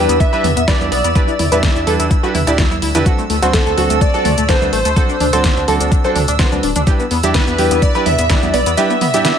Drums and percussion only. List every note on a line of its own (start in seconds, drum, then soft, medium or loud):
0.09 closed hi-hat medium
0.09 cabasa medium
0.20 kick loud
0.20 closed hi-hat medium
0.20 cabasa medium
0.33 high conga medium
0.33 cabasa soft
0.44 mid tom loud
0.44 open hi-hat loud
0.57 closed hi-hat medium
0.57 cabasa medium
0.68 kick loud
0.68 snare loud
0.68 closed hi-hat medium
0.68 cabasa medium
0.81 high conga loud
0.81 cabasa soft
0.92 open hi-hat loud
1.04 closed hi-hat medium
1.04 cabasa medium
1.15 kick loud
1.15 closed hi-hat medium
1.15 high conga medium
1.15 cabasa medium
1.28 cabasa soft
1.39 mid tom medium
1.39 open hi-hat loud
1.52 closed hi-hat medium
1.52 high conga medium
1.52 cabasa medium
1.63 kick loud
1.63 snare loud
1.63 closed hi-hat medium
1.63 cabasa medium
1.76 cabasa soft
1.87 open hi-hat medium
1.87 high conga medium
2.00 closed hi-hat medium
2.00 cabasa medium
2.11 kick loud
2.11 closed hi-hat medium
2.11 cabasa medium
2.23 high conga medium
2.23 cabasa soft
2.35 mid tom loud
2.35 open hi-hat loud
2.47 closed hi-hat medium
2.47 cabasa medium
2.58 kick loud
2.58 snare loud
2.58 closed hi-hat soft
2.58 cabasa medium
2.71 high conga medium
2.71 cabasa soft
2.82 open hi-hat loud
2.95 closed hi-hat medium
2.95 mid tom medium
2.95 cabasa medium
3.06 kick loud
3.06 closed hi-hat medium
3.06 high conga medium
3.06 cabasa medium
3.19 cabasa soft
3.30 open hi-hat loud
3.43 closed hi-hat medium
3.43 high conga medium
3.43 cabasa medium
3.53 kick loud
3.53 snare loud
3.53 closed hi-hat medium
3.53 cabasa medium
3.66 cabasa soft
3.78 open hi-hat medium
3.78 high conga medium
3.90 closed hi-hat medium
3.90 cabasa medium
4.01 kick loud
4.01 closed hi-hat medium
4.01 cabasa medium
4.14 high conga medium
4.14 cabasa soft
4.25 mid tom loud
4.25 open hi-hat loud
4.38 closed hi-hat medium
4.38 cabasa medium
4.49 kick loud
4.49 snare loud
4.49 closed hi-hat medium
4.49 cabasa medium
4.62 high conga medium
4.62 cabasa soft
4.73 open hi-hat medium
4.85 closed hi-hat medium
4.85 cabasa medium
4.96 kick loud
4.96 closed hi-hat medium
4.96 high conga medium
4.96 cabasa medium
5.09 cabasa soft
5.20 mid tom medium
5.20 open hi-hat loud
5.33 closed hi-hat medium
5.33 high conga medium
5.33 cabasa medium
5.44 kick loud
5.44 snare loud
5.44 closed hi-hat medium
5.44 cabasa medium
5.57 cabasa soft
5.68 open hi-hat medium
5.68 high conga medium
5.81 closed hi-hat medium
5.81 cabasa medium
5.92 kick loud
5.92 closed hi-hat medium
5.92 cabasa medium
6.04 high conga medium
6.04 cabasa soft
6.16 mid tom medium
6.16 open hi-hat loud
6.28 closed hi-hat medium
6.28 cabasa medium
6.39 kick loud
6.39 snare loud
6.39 closed hi-hat medium
6.39 cabasa medium
6.52 high conga medium
6.52 cabasa soft
6.63 open hi-hat medium
6.76 closed hi-hat medium
6.76 mid tom medium
6.76 cabasa medium
6.87 kick loud
6.87 closed hi-hat medium
6.87 high conga medium
6.87 cabasa medium
7.00 cabasa soft
7.11 open hi-hat loud
7.23 closed hi-hat medium
7.23 high conga medium
7.23 cabasa medium
7.34 kick loud
7.34 snare loud
7.34 closed hi-hat medium
7.34 cabasa medium
7.47 cabasa soft
7.58 open hi-hat medium
7.58 high conga medium
7.71 closed hi-hat medium
7.71 cabasa medium
7.82 kick loud
7.82 closed hi-hat medium
7.82 cabasa medium
7.95 high conga medium
7.95 cabasa soft
8.06 mid tom medium
8.06 open hi-hat loud
8.19 closed hi-hat medium
8.19 cabasa medium
8.30 kick loud
8.30 snare loud
8.30 closed hi-hat medium
8.30 cabasa medium
8.42 high conga medium
8.42 cabasa soft
8.54 open hi-hat medium
8.66 closed hi-hat medium
8.66 cabasa medium
8.77 closed hi-hat medium
8.77 high conga loud
8.77 cabasa medium
8.90 cabasa soft
9.01 mid tom medium
9.01 open hi-hat loud
9.14 closed hi-hat medium
9.14 high conga medium
9.14 cabasa medium
9.25 snare loud
9.25 closed hi-hat medium
9.25 cabasa medium